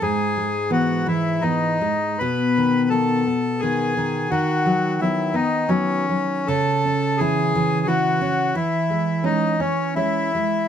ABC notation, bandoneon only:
X:1
M:3/4
L:1/8
Q:1/4=86
K:Bmix
V:1 name="Bandoneon"
G2 F E D2 | B2 A2 G2 | F2 E D C2 | A2 G2 F2 |
E2 D C E2 |]